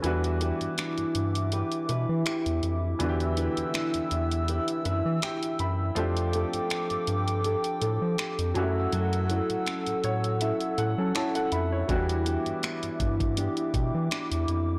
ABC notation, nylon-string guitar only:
X:1
M:4/4
L:1/8
Q:"Swing 16ths" 1/4=81
K:Edor
V:1 name="Nylon-string guitar"
[E,B] [DGB] D2 [DGB] B G2 | [E,B] [DGB] D2 [DGB] B G2 | [=F,A] [DGA] D2 [DGA] A G ^F, | [F,A] [CEA] C2 [CEA] A E2 |
[E,G] [B,DG] B,2 [B,DG] G D2 |]